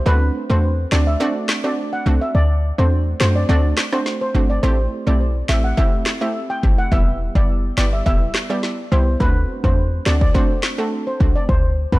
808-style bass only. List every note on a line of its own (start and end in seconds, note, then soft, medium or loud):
0.06 0.31 D2 loud
0.50 0.86 E2 medium
0.92 1.16 D2 medium
2.06 2.19 C2 medium
2.35 2.72 D2 loud
2.78 3.14 E2 medium
3.20 3.45 F#2 medium
3.49 3.74 D2 loud
4.35 4.59 G1 medium
4.63 4.88 A1 loud
5.07 5.43 B1 medium
5.49 5.73 A1 loud
6.63 6.76 G1 medium
6.92 7.29 E1 loud
7.35 7.71 F#1 medium
7.78 8.02 G1 loud
8.06 8.31 E1 loud
8.92 9.16 C2 medium
9.20 9.45 D2 loud
9.64 10.00 E2 medium
10.06 10.31 D2 medium
11.21 11.33 C2 medium
11.49 11.86 D2 loud
11.92 11.99 E2 medium